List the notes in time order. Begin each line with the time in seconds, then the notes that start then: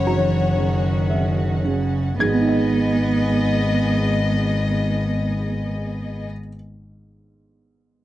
Already playing: F#1 F#2 C#3 C#4 F#4 C#5 F#5 B5
0.06 E3 F#4 A#5
0.56 C#3 D#3
1.10 E5
1.64 C#3
2.19 G#1 G#2 B3 G#4 D#5 G#6
2.27 G#3
2.34 B3
2.40 D#4
2.47 D#5